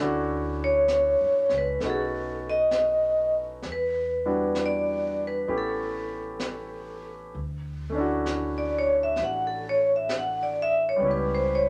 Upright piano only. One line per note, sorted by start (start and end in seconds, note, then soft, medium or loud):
0.00 1.79 A3 soft
0.00 1.81 C#4 soft
0.00 1.82 D4 soft
0.00 1.82 E4 soft
0.00 1.83 F#4 medium
1.80 3.64 A3 soft
1.80 3.64 B3 soft
1.80 3.65 C#4 soft
1.80 3.65 D#4 soft
1.86 3.66 F#4 soft
4.25 5.48 G3 soft
4.25 5.46 B3 soft
4.25 5.48 D4 soft
4.25 5.47 E4 soft
4.25 5.49 F#4 soft
5.47 7.33 A3 soft
5.47 7.33 B3 soft
5.47 7.34 C#4 soft
5.47 7.33 E4 soft
5.47 7.34 G4 soft
7.90 10.99 A3 soft
7.90 11.00 C#4 soft
7.95 11.02 D4 soft
7.95 11.03 E4 soft
8.00 11.05 F#4 medium
10.96 11.69 G3 soft
10.96 11.69 B3 soft
11.02 11.69 C#4 soft
11.02 11.69 E4 soft
11.07 11.69 G4 medium